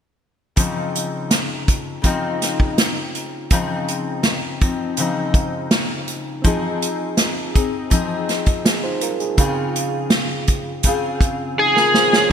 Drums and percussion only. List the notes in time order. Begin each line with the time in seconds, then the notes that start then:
0.57 kick, closed hi-hat
0.95 closed hi-hat
1.31 snare, closed hi-hat
1.68 kick, closed hi-hat
2.03 kick, closed hi-hat
2.42 snare, closed hi-hat
2.60 kick
2.78 snare, closed hi-hat
3.15 closed hi-hat
3.50 kick, closed hi-hat
3.88 closed hi-hat
4.23 snare, closed hi-hat
4.61 kick, closed hi-hat
4.97 closed hi-hat
5.34 kick, closed hi-hat
5.71 snare, closed hi-hat
6.08 closed hi-hat
6.44 kick, closed hi-hat
6.82 closed hi-hat
7.17 snare, closed hi-hat
7.55 kick, closed hi-hat
7.91 kick, closed hi-hat
8.29 snare, closed hi-hat
8.46 kick, closed hi-hat
8.65 snare, closed hi-hat
9.01 closed hi-hat
9.20 closed hi-hat
9.38 kick, closed hi-hat
9.76 closed hi-hat
10.10 snare, closed hi-hat
10.47 kick, closed hi-hat
10.83 kick, closed hi-hat
11.21 kick, closed hi-hat
11.76 snare
11.94 snare
12.13 snare